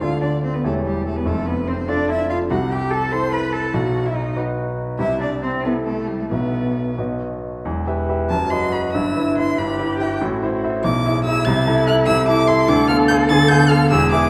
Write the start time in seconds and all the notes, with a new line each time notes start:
0.01 D2 D3 F4 A4 D5 F5
0.21 D4 D5
0.43 C4 C5
0.54 B3 B4
0.64 E1 E2 A3 E4 G4 A4 C#5
0.85 G3 G4
1.06 A3 A4
1.16 B3 B4
1.25 F1 F2 A3 A4
1.46 B3 B4
1.67 C4 C5
1.87 D4 F4 A4 D5
2.09 E4 E5
2.29 F4 F5
2.50 C2 C3 F#4 F#5
2.70 G4 G5
2.90 A4 A5
3.11 E4 A4 C5 C6
3.32 B4 B5
3.53 A4 A5
3.74 B1 B2 F#4 F#5
4.06 E4 E5
4.15 D#4 D#5
4.36 D#4 F#4 B4
4.99 C2 C3 E4 E5
5.20 D4 D5
5.42 C4 C5
5.63 B3 E4 A4 B4 E5
5.85 A3 A4
6.07 G3 G4
6.20 A3 A4
6.30 B1 B2 B3 F#4 B4 E5
6.98 B1 B2 F#4 B4 D#5
7.65 E1 E2
7.87 G4 B4 E5
8.09 G4 B4 E5
8.29 F#1 F#2 F#4 A5
8.50 F#4 B4 D#5 C6
8.72 F#4 B4 D#5 B5
8.92 G1 G2 E4 E6
9.16 E4 B4 E5
9.37 E4 B4 E5 C6
9.57 G1 G2 G4 B5
9.79 E4 B4 E5
10.00 E4 B4 E5 G5
10.21 A1 A2 F#4
10.43 E4 C5 E5
10.64 E4 C5 E5
10.82 B1 B2 E4 D6
11.05 E4 G#4 E5
11.24 E4 G#4 E5 E6
11.45 C2 C3 A6
11.67 E4 A4 E5
11.87 E4 A4 E5 F#6
12.06 C2 C3 E6
12.28 E4 A4 E5 D6
12.47 E4 A4 E5 C6
12.68 D2 D3 A4 D6
12.88 B3 A4 F5 F6
13.08 B3 A4 F5 G6
13.29 D2 D3 A6
13.48 B3 A4 F5 G6
13.70 B3 A4 F5 F6
13.90 E1 E2 G#4 E6
14.11 B3 G#4 E5 D6